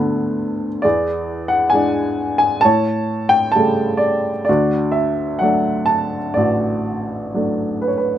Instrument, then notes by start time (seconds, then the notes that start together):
upright piano
Already playing: D2 D3 A3 F#4 B4
0.00 B3
0.82 E2 G#4 D5
1.48 F#5
1.70 E3 G#3 D4 G#5
2.38 G#5
2.61 A2 C#5 A5
3.29 G5
3.52 G3 A5
3.56 C#3 A3
3.97 D5
4.45 D5
4.49 D2 F#4
4.92 E5
5.39 F#3 A3 D4 F#5
5.86 A5
6.34 A1 F#4 D5
7.34 F#3 A3 D4
7.82 B4
7.88 C#5
7.97 B4